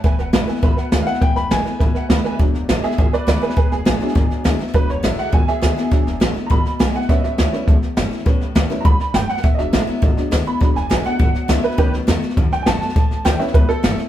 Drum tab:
HH |----p-------p---|----p-------p---|----p-------p---|----p-------p---|
SD |o-o-o-ooo-o-o-oo|o-o-o-o-o-o-o-o-|o-o-o-ooo-o-o-oo|o-o-o-ooo-o-o-oo|
BD |o-------o-------|o-------o-------|o-------o-------|o-------o-------|

HH |----p-------p---|----p-------p---|----p-------p---|----p-------p---|
SD |o-o-o-o-o-o-o-o-|o-o-o-o-o-o-o-oo|o-o-o-o-o-o-o-oo|o-o-o-o-o-o-o-oo|
BD |o-------o-------|o-------o-------|o-------o-------|o-------o-------|

HH |----p-------p---|----p-------p---|----p-------p---|----p-------p---|
SD |o-o-o-o-o-o-o-o-|o-o-o-o-o-o-o-oo|o-o-o-ooo-o-o-oo|o-o-o-ooo-o-o-o-|
BD |o-------o-------|o-------o-------|o-------o-------|o-------o-------|